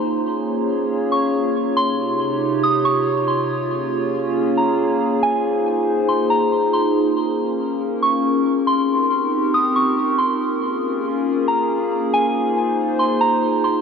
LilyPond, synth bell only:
\new Staff \with { instrumentName = "Synth bell" } { \time 4/4 \key bes \dorian \tempo 4 = 139 r2 r8 des'''8 r4 | c'''2 ees'''8 des'''4 c'''8 | r2 r8 bes''8 r4 | aes''2 c'''8 bes''4 c'''8 |
r2 r8 des'''8 r4 | c'''2 ees'''8 des'''4 c'''8 | r2 r8 bes''8 r4 | aes''2 c'''8 bes''4 c'''8 | }